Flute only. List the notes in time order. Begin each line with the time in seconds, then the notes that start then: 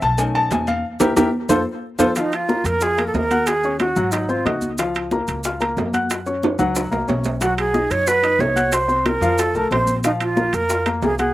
2.18 D#4
2.35 F4
2.66 A#4
2.83 G#4
3.07 A4
3.14 A#4
3.47 G#4
3.80 F#4
4.12 D#4
4.30 F4
4.46 F#4
7.42 F#4
7.59 G#4
7.91 C#5
8.08 B4
8.40 C#5
8.74 C5
9.06 A#4
9.39 A4
9.55 A#4
9.72 C5
10.05 D#4
10.21 F4
10.54 A#4
11.03 G#4
11.19 G#4